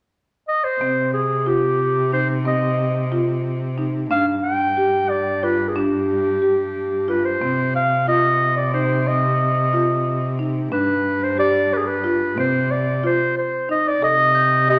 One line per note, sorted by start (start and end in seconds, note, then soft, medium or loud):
0.48 0.66 D#5 medium
0.64 1.13 C5 medium
0.81 4.12 C3 medium
0.81 1.25 C4 medium
1.13 1.48 G#4 medium
1.46 1.90 F4 medium
1.46 2.12 G4 medium
2.12 2.34 D#4 medium
2.12 2.28 C5 medium
2.45 2.89 C4 medium
2.45 3.09 D#5 medium
3.12 3.56 F4 medium
3.78 4.00 D#4 medium
4.11 7.43 G2 medium
4.11 4.55 D4 medium
4.11 4.26 F5 medium
4.43 5.11 G5 medium
4.77 5.21 G4 medium
5.10 5.45 D5 medium
5.43 5.65 F4 medium
5.43 5.70 B4 medium
5.69 5.78 G#4 medium
5.76 6.20 D4 medium
5.76 7.08 G4 medium
6.42 6.86 G4 medium
7.08 7.30 F4 medium
7.08 7.26 B4 medium
7.25 7.75 C5 medium
7.41 10.74 C3 medium
7.41 7.85 C4 medium
7.75 8.06 F5 medium
8.08 8.51 F4 medium
8.08 8.54 D#5 medium
8.57 8.73 D5 medium
8.74 8.96 D#4 medium
8.74 9.09 C5 medium
9.06 9.50 C4 medium
9.06 10.40 D#5 medium
9.73 10.17 F4 medium
10.39 10.61 D#4 medium
10.72 12.39 G2 medium
10.72 11.16 D4 medium
10.72 11.25 B4 medium
11.23 11.38 C5 medium
11.38 11.82 G4 medium
11.38 11.75 D5 medium
11.73 11.79 B4 medium
11.77 11.88 G#4 medium
11.86 12.38 B4 medium
12.04 12.26 F4 medium
12.37 13.18 C3 medium
12.37 12.81 C4 medium
12.37 12.73 C5 medium
12.71 13.04 D5 medium
13.03 13.47 F4 medium
13.03 13.35 C5 medium
13.38 13.68 C5 medium
13.69 13.91 D#4 medium
13.69 13.90 D#5 medium
13.88 14.03 D5 medium
14.02 14.79 C3 medium
14.02 14.46 A4 medium
14.02 14.65 D#5 medium
14.35 14.79 G6 medium
14.68 14.79 G4 medium
14.68 14.79 D#5 medium